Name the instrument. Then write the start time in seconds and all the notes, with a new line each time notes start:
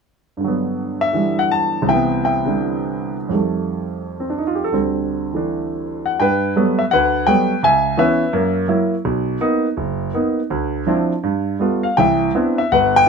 grand piano
0.37 G2 D3
0.44 F#3 B3
1.01 E5
1.13 D3 E3 G3
1.39 F#5
1.52 A5
1.82 C2
1.86 C3 E3 E5 G5
1.93 B3
2.25 E5 G5
2.45 C3 D3 G3
3.29 F2 D#3 G3
3.34 A3
4.20 C4
4.30 D4
4.38 D#4
4.47 F4
4.55 G4
4.64 A4
4.72 D2 D3 G3 C4
5.33 E3 A3 D4
6.06 F#5
6.20 G2 B4 G5
6.56 F#3 G3 A3 B3
6.79 E5
6.91 D2 B4 F#5
7.27 F#3 G3 A3 B3 G5
7.63 C#2 E5 G#5
7.97 E3 B3 C#4 B4 E5
8.33 F#2 A#3
8.68 F#3 A#3 E4
9.05 B1
9.41 A#3 B3 D#4
9.77 F#1
10.14 A#3 B3 D#4
10.50 D2
10.87 F3 C4 D4 E4
11.23 G2
11.59 G3 A3 B3 F4
11.83 F5
11.97 C2 E3 E5 G5
12.35 B3 C4 D4 E4
12.58 E5
12.72 G1 B4 F#5
12.96 G5